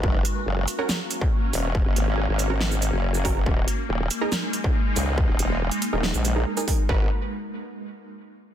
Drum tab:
HH |--x---x---x---o-|--x---x---x---o-|--x---x---x---o-|--x--xx---x---o-|
SH |------x-x-x---x-|------x--xx--x--|------x-x-x---x-|------x--xx--x--|
SD |--------o-------|--------o-------|--------o-------|--------o-------|
BD |o----------o----|o-------------o-|o----------o----|o-------------o-|

HH |----------------|
SH |----------------|
SD |----------------|
BD |o---------------|